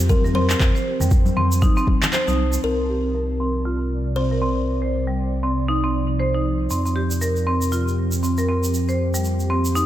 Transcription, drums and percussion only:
0.09 kick loud
0.09 high conga loud
0.09 shaker medium
0.24 low conga loud
0.24 shaker soft
0.34 high conga medium
0.50 clap medium
0.50 shaker medium
0.60 kick loud
0.60 clap medium
0.60 low conga medium
0.60 shaker medium
0.76 shaker soft
1.00 low conga medium
1.00 shaker medium
1.11 kick loud
1.11 shaker medium
1.25 high conga loud
1.25 shaker soft
1.37 low conga loud
1.52 shaker medium
1.62 kick loud
1.62 high conga medium
1.62 shaker medium
1.77 shaker soft
1.87 kick medium
1.87 high conga loud
2.02 clap medium
2.02 high conga medium
2.02 low conga medium
2.02 shaker medium
2.13 clap medium
2.13 shaker medium
2.28 high conga medium
2.28 shaker soft
2.53 shaker medium
6.70 shaker medium
6.86 shaker soft
7.11 shaker medium
7.22 shaker medium
7.36 shaker soft
7.62 shaker medium
7.72 shaker medium
7.88 shaker soft
8.12 shaker medium
8.24 shaker medium
8.38 shaker soft
8.64 shaker medium
8.74 shaker medium
8.88 shaker soft
9.14 shaker medium
9.25 shaker medium
9.40 shaker soft
9.65 shaker medium
9.76 shaker medium

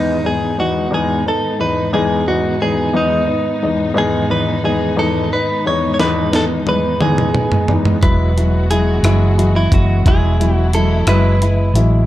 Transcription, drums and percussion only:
6.00 snare soft
6.33 snare medium
6.67 high tom medium
7.01 mid tom medium
7.18 mid tom medium
7.35 mid tom medium
7.52 floor tom medium
7.68 floor tom medium
7.85 floor tom medium
8.03 kick medium
8.03 closed hi-hat medium
8.38 closed hi-hat soft
8.71 closed hi-hat medium
9.04 cross-stick medium
9.04 closed hi-hat medium
9.39 closed hi-hat soft
9.72 kick medium
9.72 closed hi-hat medium
10.06 kick loud
10.06 closed hi-hat medium
10.41 closed hi-hat soft
10.73 closed hi-hat medium
11.07 cross-stick loud
11.07 closed hi-hat medium
11.42 closed hi-hat soft
11.75 closed hi-hat medium

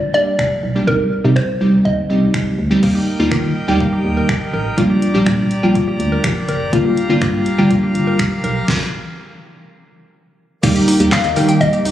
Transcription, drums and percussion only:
0.39 finger snap loud
0.39 kick loud
0.88 kick loud
1.36 finger snap loud
1.36 kick loud
1.85 kick loud
2.34 finger snap loud
2.34 kick loud
2.83 kick loud
2.83 crash medium
3.31 finger snap loud
3.31 kick loud
3.80 kick loud
4.29 finger snap loud
4.29 kick loud
4.78 kick loud
4.78 closed hi-hat medium
5.02 closed hi-hat medium
5.26 finger snap loud
5.26 kick loud
5.26 closed hi-hat medium
5.51 closed hi-hat medium
5.75 kick loud
5.75 closed hi-hat medium
6.00 closed hi-hat medium
6.24 finger snap loud
6.24 kick loud
6.24 closed hi-hat medium
6.49 closed hi-hat soft
6.73 kick loud
6.73 closed hi-hat medium
6.97 closed hi-hat medium
7.22 finger snap loud
7.22 kick loud
7.22 closed hi-hat medium
7.46 closed hi-hat medium
7.71 kick loud
7.71 closed hi-hat medium
7.95 closed hi-hat medium
8.19 finger snap loud
8.19 kick loud
8.19 closed hi-hat medium
8.44 closed hi-hat soft
8.68 kick loud
8.68 snare medium
10.63 kick loud
10.63 crash loud
10.63 tambourine soft
10.63 shaker medium
10.76 closed hi-hat soft
10.76 shaker soft
10.88 open hi-hat medium
10.88 tambourine soft
10.88 shaker medium
11.00 closed hi-hat medium
11.00 shaker medium
11.11 kick loud
11.11 snare medium
11.11 clap loud
11.11 tambourine medium
11.11 shaker medium
11.24 closed hi-hat soft
11.24 shaker soft
11.36 open hi-hat medium
11.36 tambourine medium
11.36 shaker medium
11.49 closed hi-hat medium
11.49 shaker medium
11.61 kick loud
11.61 tambourine medium
11.61 shaker medium
11.73 closed hi-hat medium
11.73 shaker medium
11.85 open hi-hat medium
11.85 tambourine soft
11.85 shaker medium

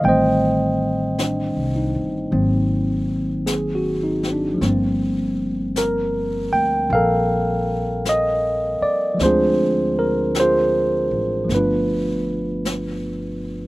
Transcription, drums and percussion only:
0.04 brush sweep soft
1.18 brush sweep soft
1.18 snare soft
1.18 hi-hat pedal soft
2.33 brush sweep soft
3.47 brush sweep soft
3.47 snare soft
3.47 hi-hat pedal medium
4.23 snare soft
4.61 brush sweep soft
4.61 snare soft
5.76 brush sweep soft
5.76 snare soft
5.76 hi-hat pedal soft
6.90 brush sweep soft
8.05 brush sweep soft
8.05 snare soft
8.05 hi-hat pedal soft
9.19 brush sweep soft
9.19 snare soft
10.35 brush sweep soft
10.35 snare soft
10.35 hi-hat pedal soft
11.49 brush sweep soft
11.49 snare soft
12.65 brush sweep soft
12.65 snare soft
12.65 hi-hat pedal soft

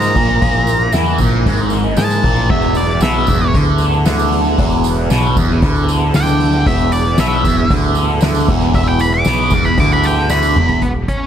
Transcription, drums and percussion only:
0.02 tambourine medium
0.15 kick loud
0.15 open hi-hat medium
0.15 tambourine soft
0.29 tambourine soft
0.42 kick loud
0.42 open hi-hat medium
0.42 tambourine soft
0.55 tambourine soft
0.67 open hi-hat medium
0.67 tambourine medium
0.80 tambourine soft
0.93 snare loud
0.93 open hi-hat medium
0.93 tambourine loud
1.06 tambourine soft
1.18 kick medium
1.18 open hi-hat medium
1.18 tambourine medium
1.46 kick loud
1.46 open hi-hat medium
1.58 tambourine soft
1.70 open hi-hat medium
1.70 tambourine medium
1.84 tambourine soft
1.97 snare loud
1.97 open hi-hat medium
1.97 tambourine medium
2.11 tambourine medium
2.23 kick loud
2.23 open hi-hat medium
2.23 tambourine soft
2.36 tambourine soft
2.50 kick loud
2.50 crash loud
2.62 tambourine soft
2.75 open hi-hat medium
2.75 tambourine medium
3.01 snare loud
3.01 open hi-hat medium
3.01 tambourine loud
3.27 kick loud
3.27 open hi-hat medium
3.27 tambourine medium
3.53 kick loud
3.53 open hi-hat medium
3.53 tambourine soft
3.65 tambourine soft
3.78 open hi-hat medium
3.78 tambourine medium
3.92 tambourine soft
4.05 snare loud
4.05 open hi-hat medium
4.05 tambourine medium
4.19 tambourine medium
4.32 open hi-hat medium
4.32 tambourine soft
4.45 tambourine soft
4.58 kick loud
4.58 open hi-hat medium
4.70 tambourine soft
4.84 open hi-hat medium
4.84 tambourine medium
5.10 snare loud
5.10 open hi-hat medium
5.10 tambourine loud
5.37 kick loud
5.37 open hi-hat medium
5.37 tambourine medium
5.62 kick loud
5.62 open hi-hat medium
5.62 tambourine soft
5.76 tambourine soft
5.88 open hi-hat medium
5.88 tambourine medium
6.14 snare loud
6.14 open hi-hat medium
6.14 tambourine loud
6.27 tambourine medium
6.40 open hi-hat medium
6.40 tambourine soft
6.52 tambourine soft
6.66 kick loud
6.66 open hi-hat medium
6.79 tambourine soft
6.92 open hi-hat medium
6.92 tambourine medium
7.18 snare loud
7.18 open hi-hat medium
7.18 tambourine loud
7.45 kick medium
7.45 open hi-hat medium
7.45 tambourine medium
7.70 kick loud
7.70 open hi-hat medium
7.70 tambourine soft
7.82 tambourine soft
7.95 open hi-hat medium
7.95 tambourine medium
8.21 snare loud
8.21 open hi-hat medium
8.21 tambourine medium
8.35 tambourine medium
8.48 kick loud
8.48 open hi-hat medium
8.48 tambourine soft
8.61 tambourine soft
8.74 kick loud
8.74 open hi-hat medium
8.74 tambourine soft
8.87 tambourine soft
8.99 open hi-hat medium
8.99 tambourine medium
9.13 tambourine soft
9.25 snare loud
9.25 open hi-hat medium
9.25 tambourine loud
9.38 tambourine soft
9.50 kick loud
9.50 open hi-hat medium
9.50 tambourine medium
9.64 tambourine soft
9.78 kick loud
9.78 open hi-hat medium
9.78 tambourine soft
9.91 tambourine soft
10.04 open hi-hat medium
10.04 tambourine medium
10.16 tambourine soft
10.30 snare medium
10.30 tambourine loud
10.43 tambourine medium
10.56 mid tom loud
10.56 tambourine soft
10.68 floor tom loud
10.68 tambourine soft
10.82 kick loud
10.82 closed hi-hat medium
11.08 kick medium
11.08 closed hi-hat medium

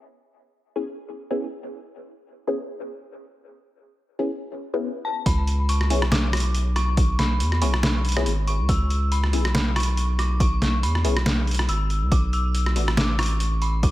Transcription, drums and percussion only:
5.26 kick loud
5.26 closed hi-hat medium
5.47 closed hi-hat medium
5.69 closed hi-hat medium
5.81 cross-stick soft
5.90 open hi-hat medium
6.02 cross-stick medium
6.12 snare loud
6.12 closed hi-hat medium
6.33 cross-stick medium
6.33 closed hi-hat medium
6.37 closed hi-hat medium
6.40 closed hi-hat medium
6.55 closed hi-hat medium
6.76 cross-stick soft
6.76 closed hi-hat medium
6.97 kick loud
6.97 closed hi-hat medium
7.19 snare medium
7.19 closed hi-hat medium
7.40 closed hi-hat medium
7.52 cross-stick soft
7.62 open hi-hat loud
7.74 cross-stick medium
7.83 snare loud
7.83 closed hi-hat medium
8.05 closed hi-hat medium
8.09 closed hi-hat medium
8.12 closed hi-hat medium
8.17 cross-stick medium
8.26 closed hi-hat medium
8.47 closed hi-hat medium
8.69 kick loud
8.69 closed hi-hat medium
8.90 closed hi-hat medium
9.12 closed hi-hat medium
9.24 cross-stick medium
9.33 open hi-hat medium
9.45 cross-stick medium
9.55 snare loud
9.55 closed hi-hat medium
9.76 cross-stick medium
9.76 closed hi-hat medium
9.80 closed hi-hat medium
9.83 closed hi-hat medium
9.97 closed hi-hat medium
10.19 cross-stick medium
10.19 closed hi-hat medium
10.40 kick loud
10.40 closed hi-hat medium
10.62 snare medium
10.62 closed hi-hat medium
10.83 closed hi-hat medium
10.95 cross-stick medium
11.05 open hi-hat medium
11.17 cross-stick medium
11.26 snare loud
11.26 closed hi-hat medium
11.47 closed hi-hat soft
11.51 closed hi-hat medium
11.55 closed hi-hat medium
11.59 cross-stick medium
11.69 closed hi-hat medium
11.90 closed hi-hat medium
12.12 kick loud
12.12 closed hi-hat medium
12.33 closed hi-hat soft
12.55 closed hi-hat medium
12.66 cross-stick medium
12.76 open hi-hat medium
12.88 cross-stick medium
12.97 snare loud
12.97 closed hi-hat medium
13.19 cross-stick medium
13.19 closed hi-hat soft
13.23 closed hi-hat medium
13.26 closed hi-hat medium
13.40 closed hi-hat medium
13.62 closed hi-hat soft
13.83 kick loud
13.83 closed hi-hat medium

